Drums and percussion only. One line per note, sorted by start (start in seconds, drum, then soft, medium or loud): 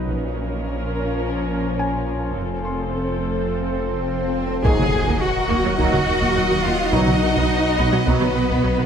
0.08 taiko soft
4.65 taiko medium
4.79 taiko mid medium
5.08 taiko medium
5.50 taiko medium
5.79 taiko medium
5.93 taiko mid medium
6.22 taiko medium
6.93 taiko medium
7.07 taiko mid medium
7.36 taiko medium
7.79 taiko medium
8.07 taiko medium
8.22 taiko mid medium
8.50 taiko medium